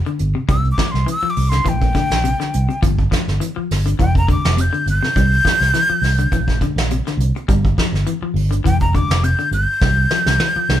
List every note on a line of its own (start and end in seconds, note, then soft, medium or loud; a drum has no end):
0.06 0.24 D3 medium
0.06 closed hi-hat soft
0.19 0.32 G1 medium
0.19 closed hi-hat soft
0.35 0.43 C3 medium
0.49 0.72 C2 loud
0.49 0.66 G3 medium
0.49 0.69 E6 loud
0.49 kick medium
0.49 closed hi-hat medium
0.65 closed hi-hat soft
0.71 0.93 D6 medium
0.78 0.96 F3 medium
0.78 kick medium
0.78 snare medium
0.78 closed hi-hat soft
0.91 1.04 C2 medium
0.91 1.08 C6 medium
0.91 snare soft
1.06 1.16 E3 medium
1.06 closed hi-hat medium
1.11 1.32 E6 loud
1.22 1.41 F3 medium
1.22 muted fingered electric bass stroke soft
1.30 1.51 D6 medium
1.36 1.60 C2 medium
1.36 open hi-hat medium
1.49 1.60 D3 medium
1.49 1.70 C6 medium
1.49 snare soft
1.49 closed hi-hat soft
1.65 2.01 A#1 medium
1.65 1.83 E3 medium
1.65 2.80 G5 loud
1.65 kick medium
1.65 closed hi-hat medium
1.81 kick medium
1.81 closed hi-hat soft
1.95 2.12 D3 medium
1.95 kick medium
1.95 snare soft
1.95 closed hi-hat soft
2.10 2.33 A#1 medium
2.10 snare medium
2.10 closed hi-hat soft
2.24 2.33 C3 medium
2.24 closed hi-hat medium
2.40 2.58 D3 medium
2.40 snare soft
2.40 closed hi-hat soft
2.54 2.66 C2 medium
2.54 closed hi-hat medium
2.69 2.77 C3 medium
2.69 closed hi-hat soft
2.82 3.05 G1 medium
2.82 3.00 F3 medium
2.82 kick medium
2.82 closed hi-hat medium
2.99 kick medium
2.99 closed hi-hat soft
3.11 3.29 F3 medium
3.11 kick medium
3.11 snare medium
3.11 closed hi-hat medium
3.28 3.38 G1 medium
3.28 snare soft
3.28 closed hi-hat soft
3.40 3.50 E3 medium
3.40 closed hi-hat medium
3.56 3.74 F3 medium
3.56 muted fingered electric bass stroke soft
3.71 3.93 G1 medium
3.71 snare soft
3.71 open hi-hat medium
3.86 3.94 D3 medium
3.86 closed hi-hat soft
3.99 4.34 F1 medium
3.99 4.17 E3 medium
3.99 4.15 G5 loud
3.99 kick medium
3.99 closed hi-hat medium
4.15 4.29 A#5 medium
4.15 kick medium
4.28 4.46 D3 medium
4.28 4.62 D6 medium
4.28 kick medium
4.28 closed hi-hat medium
4.44 4.67 F1 medium
4.44 snare medium
4.44 closed hi-hat soft
4.57 4.67 C3 medium
4.57 4.87 G6 medium
4.57 closed hi-hat medium
4.73 4.90 D3 medium
4.73 closed hi-hat soft
4.86 4.99 G1 medium
4.86 6.59 G6 loud
4.86 closed hi-hat medium
5.03 5.11 C3 medium
5.03 snare soft
5.16 5.39 C2 medium
5.16 5.33 G3 medium
5.16 kick loud
5.16 closed hi-hat medium
5.33 closed hi-hat soft
5.45 5.62 F3 medium
5.45 kick medium
5.45 snare medium
5.45 closed hi-hat medium
5.60 5.71 C2 medium
5.60 snare soft
5.74 5.83 E3 medium
5.74 snare soft
5.74 closed hi-hat medium
5.90 6.07 F3 medium
5.90 muted fingered electric bass stroke soft
6.02 6.25 C2 medium
6.02 snare soft
6.02 open hi-hat medium
6.19 6.27 D3 medium
6.19 closed hi-hat soft
6.32 6.67 A#1 medium
6.32 6.50 E3 medium
6.32 kick medium
6.32 closed hi-hat medium
6.48 kick medium
6.48 snare soft
6.48 closed hi-hat soft
6.61 6.79 D3 medium
6.61 kick medium
6.61 closed hi-hat medium
6.76 6.99 A#1 medium
6.76 snare medium
6.76 closed hi-hat soft
6.90 7.01 C3 medium
6.90 closed hi-hat medium
7.06 7.25 D3 medium
7.06 snare soft
7.06 closed hi-hat soft
7.17 7.31 C2 medium
7.17 closed hi-hat medium
7.36 muted clean electric guitar stroke medium
7.36 closed hi-hat soft
7.48 7.72 G1 medium
7.48 7.66 G3 medium
7.48 kick loud
7.48 closed hi-hat medium
7.65 kick medium
7.65 closed hi-hat soft
7.78 7.96 F3 medium
7.78 kick medium
7.78 snare medium
7.78 closed hi-hat medium
7.92 8.03 G1 medium
7.92 snare soft
7.92 closed hi-hat soft
8.07 8.16 E3 medium
8.07 closed hi-hat medium
8.22 8.40 F3 medium
8.22 muted fingered electric bass stroke soft
8.34 8.58 G1 medium
8.34 open hi-hat medium
8.51 8.59 D3 medium
8.51 closed hi-hat soft
8.64 9.00 F1 medium
8.64 8.82 E3 medium
8.64 8.80 G5 loud
8.64 kick medium
8.64 closed hi-hat medium
8.81 8.97 A#5 medium
8.81 kick medium
8.94 9.12 D3 medium
8.94 9.26 D6 medium
8.94 kick medium
8.94 closed hi-hat medium
9.09 9.32 F1 medium
9.09 snare medium
9.09 closed hi-hat soft
9.23 9.33 C3 medium
9.23 9.52 G6 medium
9.23 closed hi-hat medium
9.39 9.57 D3 medium
9.39 closed hi-hat soft
9.51 9.64 G1 medium
9.51 10.80 G6 loud
9.51 closed hi-hat medium
9.82 10.05 C2 loud
9.82 muted clean electric guitar stroke medium
9.82 kick loud
9.82 snare medium
10.11 10.29 F3 medium
10.11 snare medium
10.26 10.37 C2 medium
10.26 snare medium
10.40 10.50 E3 medium
10.40 snare medium
10.56 10.74 F3 medium
10.56 muted fingered electric bass stroke soft
10.69 10.80 C2 medium
10.69 snare medium